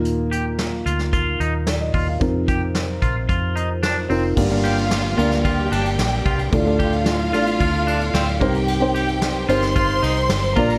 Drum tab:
CC |----------------|----------------|x---------------|----------------|
RD |----------------|----------------|-xxxxxxxx-xxx-xx|xxxxxxxxxxxxxxxx|
HH |x-x-x-x-x-x-x-o-|x-x-x-x-x-x-x-o-|----------------|----------------|
SD |----o--o----o---|----o-------o---|----o--o----o---|----o-------o---|
BD |--------o-----o-|o-o---o-o-------|o-------o-----o-|o-o-----o-----o-|

CC |----------------|
RD |x-xxx-xxxxxxxxxx|
HH |----------------|
SD |----o--o----o---|
BD |--------o-----o-|